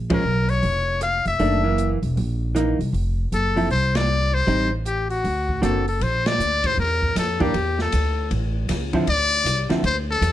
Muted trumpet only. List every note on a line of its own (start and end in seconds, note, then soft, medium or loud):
0.14 0.52 A#4 medium
0.50 1.02 C#5 medium
1.03 1.25 F5 medium
1.28 2.00 E5 medium
3.34 3.69 A4 medium
3.71 3.98 C5 medium
3.96 4.36 D5 loud
4.34 4.72 C5 medium
4.87 5.09 G4 medium
5.10 5.59 F#4 medium
5.64 5.86 A4 medium
5.89 6.04 A4 medium
6.03 6.28 C5 medium
6.27 6.68 D5 loud
6.67 6.79 C5 medium
6.80 7.15 A#4 medium
7.19 7.44 A4 medium
7.42 7.80 G4 medium
7.82 8.29 A4 medium
9.10 9.68 D5 loud
9.86 9.97 C5 medium
10.11 10.32 A4 medium